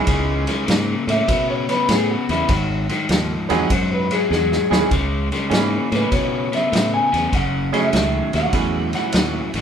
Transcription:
Already playing: upright piano E3 B3 C#4 D#4 G#4
0.07 fingered electric bass C#2, overdriven electric guitar C#3 G#3, kick, snare, ride
0.47 overdriven electric guitar C#3 G#3, snare, ride
0.66 fingered electric bass G#2, overdriven electric guitar C#3 A#3, snare, ride
1.07 fingered electric bass A2, overdriven electric guitar C#3 A#3, clean electric guitar E5, snare, ride
1.28 fingered electric bass B2, overdriven electric guitar C#3 B3, kick, snare, ride
1.50 clean electric guitar C#5
1.69 overdriven electric guitar C#3 B3, clean electric guitar B4, snare, ride
1.89 fingered electric bass A2, overdriven electric guitar C#3 B3, clean electric guitar G#4, snare, ride
2.11 clean electric guitar F#4
2.29 fingered electric bass E2, overdriven electric guitar C#3 B3, clean electric guitar E4, snare, ride
2.49 fingered electric bass G#1, overdriven electric guitar G#2 D#3, clean electric guitar F#4, kick, snare, ride
2.89 overdriven electric guitar G#2 D#3, snare, ride
3.09 fingered electric bass D#2, overdriven electric guitar G#2 F3, snare, ride
3.49 fingered electric bass E2, overdriven electric guitar G#2 F3, upright piano F#3 B3 C4 D#4 G#4, clean electric guitar F#5, snare, ride
3.70 fingered electric bass F#2, overdriven electric guitar G#2 F#3, clean electric guitar C5, kick, snare, ride
3.93 clean electric guitar B4
4.11 overdriven electric guitar G#2 F#3, clean electric guitar G#4, snare, ride
4.31 fingered electric bass E2, overdriven electric guitar G#2 F#3, clean electric guitar G#4, snare
4.52 snare
4.70 fingered electric bass D#2, overdriven electric guitar G#2 F#3, upright piano E3 B3 C#4 D#4 G#4, snare
4.91 fingered electric bass C#2, overdriven electric guitar C#3 G#3, kick, snare, ride
5.32 overdriven electric guitar C#3 G#3, snare, ride
5.50 fingered electric bass G#2, overdriven electric guitar C#3 A#3, upright piano E3 B3 C#4 D#4 G#4, snare, ride
5.92 fingered electric bass A2, overdriven electric guitar C#3 A#3, clean electric guitar B4, snare, ride
6.11 fingered electric bass B2, overdriven electric guitar C#3 B3, clean electric guitar C#5, kick, snare, ride
6.52 overdriven electric guitar C#3 B3, clean electric guitar E5, snare, ride
6.71 fingered electric bass A2, overdriven electric guitar C#3 B3, snare, ride
6.94 clean electric guitar G#5
7.12 fingered electric bass E2, overdriven electric guitar C#3 B3, snare, ride
7.32 fingered electric bass F#1, overdriven electric guitar F#2 C#3, clean electric guitar F#5, kick, snare, ride
7.72 overdriven electric guitar F#2 C#3, upright piano F#3 A3 C#4 E4 G#4, clean electric guitar E5, snare, ride
7.92 fingered electric bass C#2, overdriven electric guitar F#2 D#3, snare, ride
8.33 fingered electric bass D#2, overdriven electric guitar F#2 D#3, clean electric guitar F#5, snare, ride
8.53 fingered electric bass E2, overdriven electric guitar F#2 E3, upright piano F#3 A3 C#4 E4 G#4, kick, snare, ride
8.93 overdriven electric guitar F#2 E3, clean electric guitar F#5, snare, ride
9.13 fingered electric bass D#2, overdriven electric guitar F#2 E3, snare, ride
9.54 fingered electric bass A1, overdriven electric guitar F#2 E3, snare, ride

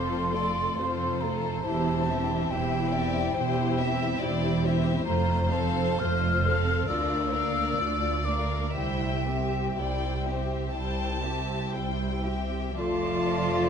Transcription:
Already playing: double bass section F1, cello section F2, viola section C4 F4, violin section A4 C5, flute C6
0.32 viola section A3 A4, violin section F4 A4 D5
0.77 double bass section F1, cello section F2, viola section C4 F4, violin section A4 C5
1.20 viola section A3 A4, violin section F4 A4, flute A#5
1.64 double bass section E1, cello section E2, violin section E4 C5, viola section E4 G4, flute A5
2.06 viola section C4 E4, violin section G4 E5
2.48 double bass section E1, cello section E2, violin section E4 C5 E5, viola section E4 G4, flute G5
2.91 viola section C4 E4, violin section G4 D5 E5
3.34 double bass section E1, cello section E2, violin section E4 C5, viola section E4 G4
3.77 viola section C4 E4, violin section G4 E5
4.20 double bass section E1, cello section E2, violin section E4 C5 D5, viola section E4 G4
4.63 viola section C4 E4, violin section G4 C5 E5
5.05 double bass section F1, cello section F2, viola section A3 F4, violin section C5, flute A#5
5.51 viola section C4 A4, violin section A4 F5, flute A5
5.99 double bass section F1, cello section F2, viola section A3 F4, violin section C5, flute F6
6.45 viola section C4 A4, violin section A4 F5
6.87 cello section D2, double bass section D2, viola section D4 F4, violin section A#4 D5, flute E6
7.31 viola section A#3 D4, violin section A#4 D5 F5
7.77 cello section D2, double bass section D2, viola section D4 F4, violin section D5
8.25 viola section A#3 D4, violin section A#4 F5, flute D6
8.73 cello section C2, double bass section C2, viola section G3 E4, violin section C5 E5 G5, flute G5
9.25 viola section C4 G4, violin section G4 E5
9.76 double bass section C2, cello section C2, viola section G3 E4, violin section C5 D5 G5
10.25 viola section C4 G4, violin section G4 C5 E5
10.73 cello section C2, double bass section C2, viola section G3 E4, violin section C5 G5 A5
11.23 viola section C4 G4, violin section G4 E5
11.74 cello section C2, double bass section C2, viola section G3 E4, violin section C5 G5
12.23 viola section C4 G4, violin section G4 E5
12.77 double bass section F1, viola section F3 D5, cello section F3, french horn section A3 F4, bassoon A3, clarinet F4, violin section F4 A5, flute F5, oboe C6

